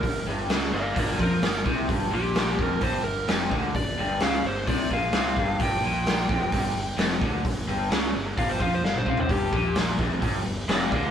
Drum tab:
HH |o---o---o---o---|o---o---o---o---|o---o---o---o---|o---o---o---o---|
SD |----oo------o---|----o-------o---|----o-------o---|----o-------o---|
T2 |----------------|----------------|----------------|----------------|
FT |----------------|----------------|----------------|----------------|
BD |o-------o-o---o-|o-----o-o-----o-|o-------o-o---o-|o-----o-o-----o-|

HH |o---o---o-------|o---o---o---o---|
SD |----o-------o---|----o-------o---|
T2 |-------------o--|----------------|
FT |---------------o|----------------|
BD |o-------o-o---o-|o-o---o-o-----o-|